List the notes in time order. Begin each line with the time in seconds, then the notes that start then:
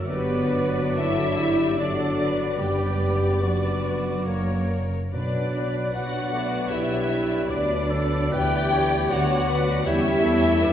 0.06 G1 F#3 B3 D4 F#4 G4 B4 D5
0.52 B4
0.97 E4 A4 E5
1.40 G4
1.78 F#3 D4 F#4 A4 D5
2.20 B4
2.59 F#1 G3 B3 D4 G4 B4 D5
3.41 F#3 B3 D4 F#4 B4 D5
4.26 F#1 A#3 C#4 A#4 C#5
5.12 B1 B2 F#3 B3 D4 B4 D5
5.55 B4 D5
5.93 B1 F#3 B3 D4 F#4 B4 D5 F#5
6.32 A3 B4 D5
6.69 B1 G3 E4 B4 C#5 D5 E5
7.09 B4 D5
7.48 D2 F#3 B3 D4 B4 D5
7.89 A4 B4 D5
8.32 D2 E3 G4 B4 D5 G5
8.71 B4 C#5 D5
9.09 D2 F#3 B3 D4 F#4 B4 C#5 D5 F#5
9.48 B4 D5
9.85 E2 G3 C#4 E4 G4 C#5 E5
10.24 A3 G4 A4 C#5
10.62 F#2 B3 D4 B4 D5